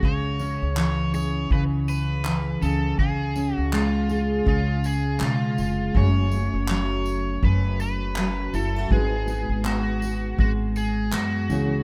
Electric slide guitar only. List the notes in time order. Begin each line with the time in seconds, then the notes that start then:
0.05 C#5
0.79 C#5
1.15 C#5
1.53 B4
1.89 B4
2.62 A4
2.99 G#4
3.55 F#4
3.74 F4
4.48 F4
4.86 G#4
5.23 F4
5.97 C#5
6.71 C#5
7.45 B4
7.81 B4
8.55 A4
8.92 G#4
9.66 F#4
10.40 F#4
10.77 G#4
11.14 F#4